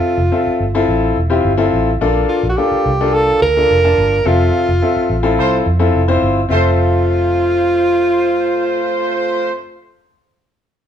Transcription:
Already playing: C4 F4 A4 E5
0.17 F1
0.32 C4 F4 A4 E5
0.47 muted fingered electric bass stroke
0.60 G1
0.75 C4 E4 F4 A4
0.88 A1
1.17 E1
1.30 C4 E4 F4 G4
1.45 G1
1.57 C4 E4 F4 A4
1.73 A1
2.01 A#1 A#3 D4 F4 A4
2.29 F4
2.43 A#1
2.49 F#4
2.57 A#3 D4 F4 G4 A4
2.71 muted fingered electric bass stroke
2.86 C2
3.01 A#3 D4 F4 A4
3.14 A4
3.42 D2 A#4
3.57 A#3 D4 F4 A4
3.70 F1
3.84 A#3 D4 F4 A5
3.98 G1
4.25 F1 C4 F4 A4 E5
4.68 F1
4.82 C4 F4 A4 E5
4.96 muted fingered electric bass stroke
5.10 A1
5.23 C4 E4 F4 A4
5.38 C2 F4 A4 C5
5.66 F2
5.79 C4 E4 F4 A4
5.94 F1
6.08 C4 E4 F4 C5
6.22 G1
6.49 F1 A3 C4 F4 A4 C5 E5

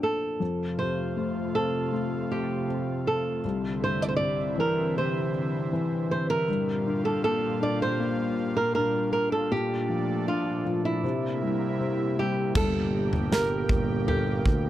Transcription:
Already playing: A#2 A3 A#3 D4
0.03 A4
0.40 F2 C3 A3 F4
0.79 C3 C5
1.17 A3
1.54 C4 A4
1.92 A3
2.31 G4
2.68 C4
3.07 A4
3.44 C2 D3 C4 E4
3.82 G2 C5
4.02 D5
4.09 C5
4.17 C3 D5
4.58 E3 A#4
4.96 C3 C5
5.73 E3
6.11 C5
6.30 A#4
6.48 G2 A#2 G3 F4
6.86 D3
7.05 A4
7.24 A#3 A4
7.62 D4 D5
7.82 C5
8.00 A#3
8.57 A#4
8.75 D4 A#4
9.13 A#4
9.32 A4
9.51 A#2 A3 D4 G4
9.89 F3
10.28 D4 F4
10.65 F3
10.85 E4
11.03 C3 A#3 E4
11.42 G3
11.80 C3
12.18 G3 G4
12.55 G1 A#2 G3 A#3 G4 A4, kick, floor tom, crash
13.13 floor tom
13.31 G4 A#4, snare
13.69 G1, kick, floor tom
14.07 G4 A4 A#4, floor tom
14.45 D2, kick

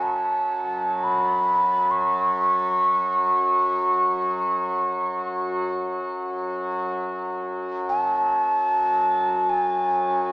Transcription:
Already playing: F#2 F#3 C#5
0.02 A5
1.04 B5
1.91 C#6
7.89 A5
9.49 G#5

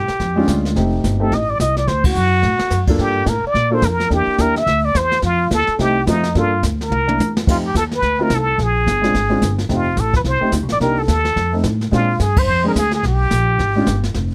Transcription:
Already playing: G4
0.08 muted upright bass stroke, snare
0.20 F2, brush sweep, kick, snare
0.36 G#3 C#4 D4 F4
0.48 D2, kick, snare, hi-hat pedal
0.65 snare
0.76 F1 A3 C4 D#4 G4, brush sweep, kick, snare
1.04 G1, kick, snare, hi-hat pedal
1.20 A3 C4 D#4 G4 A4
1.32 A1 D#5, brush sweep, kick, snare
1.50 D5
1.60 C2 D#5, kick, snare, hi-hat pedal
1.77 D5, snare
1.87 D2 C5, brush sweep, kick, snare
2.04 F#4, kick, ride
2.15 F#2, hi-hat pedal
2.43 A2, snare
2.59 muted upright bass stroke, snare
2.70 F#2, snare, hi-hat pedal
2.87 A#3 D4 F4 A4, kick, crash
2.98 G2 G4, brush sweep, kick, snare
3.26 A2 A#4, kick, snare, hi-hat pedal
3.43 D5, muted upright bass stroke
3.54 A#2, brush sweep, kick, snare
3.70 A#3 D4 F4 A4
3.74 C5
3.82 F2 A#4, kick, snare, hi-hat pedal
4.00 snare
4.10 E2 A#3 D4 E4 G4, brush sweep, kick, snare
4.14 G4
4.27 muted upright bass stroke
4.38 D#2 A#3 D4 E4 G4 A#4, kick, snare, hi-hat pedal
4.56 E5, snare
4.66 D2, brush sweep, kick, snare
4.85 D5
4.95 E2 C5, kick, snare, hi-hat pedal
5.12 snare
5.22 F2 F4, brush sweep, kick, snare
5.51 D#2 A4, kick, snare, hi-hat pedal
5.67 muted upright bass stroke, snare
5.79 C2 A3 C4 D#4 G4, brush sweep, kick, snare
6.06 F2 A3 C4 D#4 F4, kick, snare, hi-hat pedal
6.24 snare
6.35 G2 A#3 D4 F4 A4, brush sweep, kick, snare
6.63 D2, kick, snare, hi-hat pedal
6.81 A#4, snare
6.90 C2, high tom
7.07 A#3 D4 E4 A#4, high tom
7.18 E2, hi-hat pedal, high tom
7.37 snare
7.46 F2 A3 C4 D#4 F4 G4, brush sweep, kick, snare, crash
7.67 G4
7.74 D#2 A4, kick, snare, hi-hat pedal
7.92 B4, snare
8.02 D2, brush sweep, kick, snare
8.19 A3 C4 D#4 F4 A#4
8.30 C2, kick, snare, hi-hat pedal
8.35 A4
8.58 A#1, brush sweep, kick, snare
8.63 G#4
8.86 G1, kick, snare, hi-hat pedal
9.02 G#3 C4 D4 F4, snare
9.14 G#1, brush sweep, kick, snare
9.29 G#3 C4 D4 F4
9.42 G1, kick, snare, hi-hat pedal
9.59 snare
9.69 F1 A3 C4 D#4 G4, brush sweep, kick, snare
9.74 F4
9.97 A1 A4, kick, snare, hi-hat pedal
10.14 B4, kick, snare
10.24 C2 C5, brush sweep, kick, snare
10.40 A3 C4 D#4 G4, muted upright bass stroke
10.52 D2, kick, snare, hi-hat pedal
10.62 C2
10.69 A1 D5, snare
10.80 C2 A#3 D4 D#4 G4 A#4, brush sweep, kick, snare
10.99 A4
11.08 D#2, kick, snare, hi-hat pedal
11.25 snare
11.36 F2, brush sweep, kick, snare
11.52 A3 C4 D#4 A4
11.64 A2, kick, snare, hi-hat pedal
11.81 snare
11.91 A#2 G#3 C4 D4 F4, brush sweep, kick, snare
12.20 G2 G#4, kick, snare, hi-hat pedal
12.37 C5, kick, ride
12.47 F2, brush sweep
12.63 G#3 C4 D4 G#4
12.68 A#4
12.75 D2 G#4, kick, snare, hi-hat pedal
12.91 G#4, snare
13.03 B1, brush sweep, kick, snare
13.07 G4
13.31 A#1, kick, snare, hi-hat pedal
13.59 G#1, brush sweep, kick, snare
13.76 G#3 C#4 D4 F4
13.87 G1, kick, snare, hi-hat pedal
14.03 snare
14.14 F1, brush sweep, kick, snare

